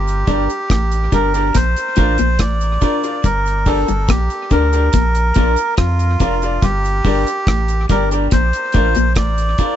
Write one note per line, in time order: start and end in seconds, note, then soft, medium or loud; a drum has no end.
0.00 0.24 G1 loud
0.00 0.11 G2 medium
0.00 1.17 G4 loud
0.07 closed hi-hat soft
0.07 cabasa soft
0.27 0.48 G1 loud
0.27 0.41 G2 medium
0.27 0.41 D4 loud
0.27 0.47 D4 medium
0.27 0.41 G4 medium
0.27 0.47 G4 medium
0.27 0.41 A#4 medium
0.27 0.48 A#4 medium
0.27 0.42 D5 loud
0.27 kick medium
0.27 closed hi-hat medium
0.27 cabasa soft
0.50 closed hi-hat soft
0.50 cabasa medium
0.70 1.09 A1 medium
0.70 0.95 A2 medium
0.70 kick loud
0.70 cross-stick loud
0.70 closed hi-hat medium
0.70 cabasa medium
0.92 closed hi-hat soft
0.92 cabasa medium
1.12 1.51 G1 medium
1.12 1.38 G2 medium
1.12 1.26 D4 medium
1.12 1.32 D4 medium
1.12 1.26 G4 medium
1.12 1.32 G4 medium
1.12 1.26 A#4 medium
1.12 1.32 A#4 medium
1.12 1.57 A#4 medium
1.12 1.26 D5 medium
1.12 kick medium
1.12 closed hi-hat medium
1.12 cabasa medium
1.34 1.47 D4 medium
1.34 1.49 D4 soft
1.34 1.49 G4 medium
1.34 1.47 G4 medium
1.34 1.48 A#4 medium
1.34 1.47 A#4 medium
1.34 1.48 D5 medium
1.34 closed hi-hat medium
1.34 cabasa medium
1.55 1.75 A#1 loud
1.55 1.68 A#2 medium
1.55 2.42 C5 loud
1.55 kick loud
1.55 cross-stick medium
1.55 closed hi-hat loud
1.55 cabasa medium
1.76 closed hi-hat medium
1.76 cabasa soft
1.96 2.18 A1 medium
1.96 2.10 A2 medium
1.96 2.10 D4 medium
1.96 2.16 D4 medium
1.96 2.11 F4 medium
1.96 2.17 F4 medium
1.96 2.11 A#4 medium
1.96 2.17 A#4 loud
1.96 2.11 D5 medium
1.96 kick loud
1.96 closed hi-hat medium
1.96 cabasa medium
2.18 2.38 A#1 medium
2.18 2.31 A#2 medium
2.18 closed hi-hat medium
2.18 cabasa medium
2.39 2.78 A1 loud
2.39 2.65 A2 medium
2.39 3.27 D5 loud
2.39 kick loud
2.39 cross-stick loud
2.39 closed hi-hat loud
2.39 cabasa medium
2.61 closed hi-hat soft
2.61 cabasa medium
2.81 2.95 D4 medium
2.81 3.01 D4 medium
2.81 2.95 F4 medium
2.81 3.01 F4 medium
2.81 2.95 A#4 medium
2.81 3.02 A#4 medium
2.81 2.96 D5 loud
2.81 kick medium
2.81 closed hi-hat medium
2.81 cabasa medium
3.03 3.16 D4 medium
3.03 3.16 F4 medium
3.03 3.17 A#4 medium
3.03 3.17 D5 medium
3.03 closed hi-hat soft
3.03 cabasa medium
3.24 3.85 G1 loud
3.24 3.49 G2 medium
3.24 3.68 A#4 loud
3.24 kick loud
3.24 closed hi-hat medium
3.24 cabasa medium
3.46 closed hi-hat medium
3.46 cabasa soft
3.66 3.80 D4 loud
3.66 3.86 D4 medium
3.66 3.80 G4 medium
3.66 3.86 G4 medium
3.66 4.10 A4 loud
3.66 3.80 A#4 medium
3.66 3.87 A#4 loud
3.66 3.80 D5 loud
3.66 kick medium
3.66 open hi-hat soft
3.66 cabasa soft
3.88 4.07 G1 loud
3.88 4.01 G2 medium
3.88 closed hi-hat soft
3.88 cabasa medium
4.08 4.29 A#1 medium
4.08 4.22 A#2 medium
4.08 4.53 G4 loud
4.08 kick loud
4.08 cross-stick loud
4.08 closed hi-hat medium
4.08 cabasa medium
4.30 closed hi-hat medium
4.30 cabasa soft
4.50 4.90 D2 medium
4.50 4.77 D3 medium
4.50 4.65 D4 medium
4.50 4.71 D4 medium
4.50 4.65 G4 medium
4.50 4.71 G4 medium
4.50 5.74 A#4 loud
4.50 4.65 A#4 medium
4.50 4.71 A#4 loud
4.50 4.65 D5 medium
4.50 kick medium
4.50 closed hi-hat medium
4.50 cabasa soft
4.73 4.86 D4 medium
4.73 4.88 D4 medium
4.73 4.86 G4 medium
4.73 4.87 G4 medium
4.73 4.87 A#4 medium
4.73 4.86 A#4 medium
4.73 4.86 D5 medium
4.73 closed hi-hat medium
4.73 cabasa medium
4.93 5.32 A#1 loud
4.93 5.19 A#2 medium
4.93 kick loud
4.93 closed hi-hat loud
4.93 cabasa medium
5.15 closed hi-hat medium
5.15 cabasa soft
5.34 5.56 A#1 medium
5.34 5.49 A#2 medium
5.34 5.49 D4 medium
5.34 5.55 D4 medium
5.34 5.50 F4 medium
5.34 5.56 F4 medium
5.34 5.50 A#4 medium
5.34 5.56 A#4 medium
5.34 5.50 D5 loud
5.34 kick loud
5.34 closed hi-hat medium
5.34 cabasa medium
5.56 closed hi-hat medium
5.56 cabasa medium
5.77 6.17 F2 loud
5.77 6.03 F3 medium
5.77 6.65 F4 loud
5.77 kick loud
5.77 cross-stick loud
5.77 closed hi-hat medium
5.77 cabasa medium
5.99 closed hi-hat soft
5.99 cabasa soft
6.20 6.59 F1 medium
6.20 6.46 F2 medium
6.20 6.40 D4 medium
6.20 6.34 D4 medium
6.20 6.34 F4 medium
6.20 6.40 F4 medium
6.20 6.34 A#4 medium
6.20 6.40 A#4 medium
6.20 6.35 D5 medium
6.20 kick medium
6.20 closed hi-hat medium
6.20 cabasa medium
6.42 6.55 D4 medium
6.42 6.55 F4 medium
6.42 6.56 A#4 medium
6.42 6.56 D5 medium
6.42 closed hi-hat soft
6.42 cabasa medium
6.62 7.01 G1 loud
6.62 6.88 G2 medium
6.62 7.86 G4 loud
6.62 kick loud
6.62 closed hi-hat medium
6.62 cabasa medium
6.84 closed hi-hat medium
6.84 cabasa soft
7.04 7.25 G1 loud
7.04 7.18 G2 medium
7.04 7.24 D4 loud
7.04 7.19 D4 medium
7.04 7.19 G4 medium
7.04 7.25 G4 medium
7.04 7.19 A#4 medium
7.04 7.25 A#4 loud
7.04 7.19 D5 loud
7.04 kick medium
7.04 open hi-hat soft
7.04 cabasa soft
7.27 closed hi-hat soft
7.27 cabasa medium
7.47 7.86 A1 medium
7.47 7.73 A2 medium
7.47 kick loud
7.47 cross-stick loud
7.47 closed hi-hat medium
7.47 cabasa medium
7.68 closed hi-hat medium
7.68 cabasa soft
7.89 8.28 G1 medium
7.89 8.15 G2 medium
7.89 8.03 D4 medium
7.89 8.09 D4 medium
7.89 8.03 G4 medium
7.89 8.10 G4 medium
7.89 8.04 A#4 medium
7.89 8.09 A#4 medium
7.89 8.10 A#4 medium
7.89 8.04 D5 loud
7.89 kick medium
7.89 closed hi-hat medium
7.89 cabasa soft
8.11 8.24 D4 medium
8.11 8.26 D4 soft
8.11 8.24 G4 medium
8.11 8.26 G4 medium
8.11 8.26 A#4 medium
8.11 8.25 A#4 medium
8.11 8.25 D5 medium
8.11 closed hi-hat soft
8.11 cabasa medium
8.31 8.52 A#1 loud
8.31 8.45 A#2 medium
8.31 9.13 C5 loud
8.31 kick loud
8.31 cross-stick medium
8.31 closed hi-hat loud
8.31 cabasa medium
8.53 closed hi-hat medium
8.53 cabasa soft
8.72 8.95 A1 medium
8.72 8.87 A2 medium
8.72 8.88 D4 medium
8.72 8.94 D4 medium
8.72 8.88 F4 medium
8.72 8.94 F4 medium
8.72 8.88 A#4 medium
8.72 8.94 A#4 medium
8.72 8.88 D5 medium
8.72 kick medium
8.72 closed hi-hat medium
8.72 cabasa soft
8.95 9.15 A#1 medium
8.95 9.08 A#2 medium
8.95 closed hi-hat medium
8.95 cabasa medium
9.15 9.55 A1 medium
9.15 9.42 A2 medium
9.15 9.76 D5 loud
9.15 kick medium
9.15 cross-stick loud
9.15 closed hi-hat medium
9.15 cabasa medium
9.38 closed hi-hat soft
9.38 cabasa medium
9.58 9.72 D4 medium
9.58 9.76 D4 medium
9.58 9.73 F4 medium
9.58 9.76 F4 medium
9.58 9.73 A#4 medium
9.58 9.76 A#4 medium
9.58 9.73 D5 medium
9.58 kick loud
9.58 closed hi-hat medium
9.58 cabasa medium